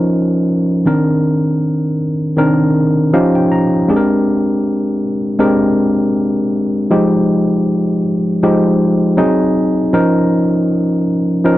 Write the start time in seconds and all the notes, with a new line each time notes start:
Already playing: F3 C#4 D#4 A#4
0.85 D#3 C4 D4 A#4
2.37 D#3 C4 D4 A#4
3.13 F3 C#4 D#4 G4 F5
3.35 G5
3.52 A#5
3.88 G#3 C4 D4 G4 G#4
3.97 A#4
5.39 G#3 C4 D4 G4 A#4
6.90 F3 G#3 D#4 G4
8.43 F3 G#3 D#4 G4
9.17 F#3 C4 D#4 G#4
9.93 F3 C#4 D#4 A#4
11.44 F3 C#4 D#4 A#4